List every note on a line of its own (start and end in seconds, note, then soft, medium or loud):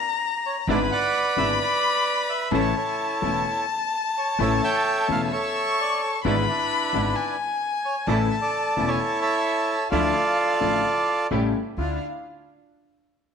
0.00 0.69 A#5 loud
0.46 0.56 C#5 medium
0.67 0.87 G#1 loud
0.67 0.88 G#1 medium
0.67 0.87 G#2 medium
0.67 0.87 D3 medium
0.67 0.88 G#3 medium
0.67 0.88 B3 medium
0.67 0.88 D4 medium
0.67 0.88 E4 medium
0.67 0.91 B4 medium
0.67 0.79 D5 loud
0.67 2.52 B5 loud
0.92 1.59 B4 medium
0.92 1.59 D5 medium
0.92 1.39 F#5 loud
1.36 1.56 G#1 medium
1.36 1.56 G#2 medium
1.36 1.56 D3 soft
1.36 1.56 G#3 soft
1.36 1.57 G#3 medium
1.36 1.56 B3 soft
1.36 1.57 D4 medium
1.36 1.56 E4 medium
1.36 1.57 E4 medium
1.36 1.48 E5 loud
1.61 2.48 B4 medium
1.61 2.31 D5 loud
2.30 2.53 E5 loud
2.51 2.71 A1 medium
2.51 2.71 A2 medium
2.51 2.71 C#3 medium
2.51 2.71 E3 medium
2.51 2.71 A3 medium
2.51 2.72 A3 medium
2.51 2.72 C#4 medium
2.51 2.72 E4 medium
2.51 2.75 A4 medium
2.51 2.75 C#5 medium
2.51 2.64 E5 loud
2.51 5.33 A5 loud
2.76 3.65 E4 medium
2.76 3.65 A4 medium
2.76 3.65 C#5 medium
3.21 3.41 E1 medium
3.21 3.41 E2 medium
3.21 3.41 C#3 soft
3.21 3.41 E3 soft
3.21 3.41 A3 soft
3.21 3.42 C#4 soft
3.21 3.41 E4 medium
3.21 3.42 E4 medium
4.18 4.38 C#5 medium
4.39 4.58 A1 medium
4.39 4.59 A1 medium
4.39 4.59 A2 medium
4.39 4.58 C#3 medium
4.39 4.58 E3 medium
4.39 4.58 A3 medium
4.39 4.59 A3 medium
4.39 4.59 C#4 medium
4.39 4.59 E4 medium
4.39 5.28 A4 medium
4.39 4.62 C#5 medium
4.39 4.51 E5 loud
4.63 5.31 C#5 medium
4.63 5.33 E5 medium
4.63 5.06 G5 loud
5.08 5.28 E1 medium
5.08 5.28 E2 medium
5.08 5.28 C#3 soft
5.08 5.28 E3 soft
5.08 5.28 A3 soft
5.08 5.29 A3 soft
5.08 5.29 C#4 soft
5.08 5.28 E4 medium
5.08 5.29 E4 medium
5.08 5.21 F5 medium
5.32 6.21 A4 medium
5.32 6.02 C#5 medium
5.32 5.81 E5 loud
5.32 6.24 C#6 loud
5.81 6.01 D5 medium
6.04 6.13 C#5 medium
6.24 6.44 G#1 medium
6.24 6.44 G#1 loud
6.24 6.44 G#2 medium
6.24 6.44 D3 medium
6.24 6.44 G#3 medium
6.24 6.44 B3 medium
6.24 6.44 D4 medium
6.24 6.44 E4 medium
6.24 6.49 B4 medium
6.24 6.37 D5 loud
6.24 7.17 B5 loud
6.49 7.36 D4 medium
6.49 7.36 E4 medium
6.49 7.37 B4 medium
6.93 7.12 G#1 medium
6.93 7.13 G#1 medium
6.93 7.13 G#2 medium
6.93 7.12 D3 soft
6.93 7.12 G#3 medium
6.93 7.13 G#3 soft
6.93 7.13 B3 soft
6.93 7.13 D4 medium
6.93 7.13 E4 medium
7.15 8.09 G#5 loud
7.85 7.96 C#5 medium
8.07 8.27 A1 loud
8.07 8.27 A1 medium
8.07 8.27 A2 medium
8.07 8.27 C#3 medium
8.07 8.27 E3 medium
8.07 8.27 A3 medium
8.07 8.27 C#4 medium
8.07 8.27 E4 medium
8.07 8.40 A4 medium
8.07 8.18 D5 loud
8.07 8.91 A5 loud
8.30 8.36 E5 loud
8.41 8.86 A4 medium
8.41 8.89 D5 loud
8.77 8.96 E1 medium
8.77 8.96 E2 medium
8.77 8.96 C#3 medium
8.77 8.96 E3 soft
8.77 8.96 A3 medium
8.77 8.96 A3 soft
8.77 8.96 C#4 medium
8.77 8.96 E4 medium
8.87 9.76 E4 medium
8.87 9.20 A4 medium
8.87 9.20 C#5 medium
8.91 9.01 G#5 medium
9.00 9.92 A5 loud
9.21 9.87 A4 medium
9.21 9.87 C#5 medium
9.21 9.88 E5 loud
9.90 10.11 D2 medium
9.90 10.11 D3 medium
9.90 10.11 F3 medium
9.90 10.11 A3 medium
9.90 10.11 D4 medium
9.90 10.12 E4 medium
9.90 11.27 F4 medium
9.90 11.27 A4 medium
9.90 11.27 D5 loud
9.90 11.30 F5 medium
10.60 10.80 A1 medium
10.60 10.81 A1 medium
10.60 10.81 A2 medium
10.60 10.80 D3 soft
10.60 10.80 F3 soft
10.60 10.81 F3 medium
10.60 10.80 A3 soft
10.60 10.81 D4 soft
10.60 10.81 E4 medium
11.30 11.51 A1 medium
11.30 11.51 A2 medium
11.30 11.51 C#3 medium
11.30 11.51 G3 medium
11.30 11.50 A3 medium
11.30 11.51 A3 medium
11.30 11.51 C#4 medium
11.30 11.51 E4 medium
11.30 11.51 G4 medium
11.77 11.97 D2 medium
11.77 11.97 D2 soft
11.77 11.97 D4 medium
11.77 11.97 D4 soft
11.77 11.97 E4 soft
11.77 11.97 F4 medium
11.77 12.00 F5 medium